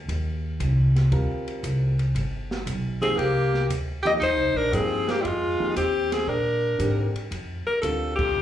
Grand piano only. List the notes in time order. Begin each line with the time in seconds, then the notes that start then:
1.11 G3 C4 F4 A#4
3.01 F3 A#3 D#4 G4
4.05 F3 A#3 D#4 G4
4.72 F3 A#3 D#4 G4
5.59 F3 A#3 D#4 G4
6.78 D3 G3 C4 G4
7.82 D3 G3 C4 F4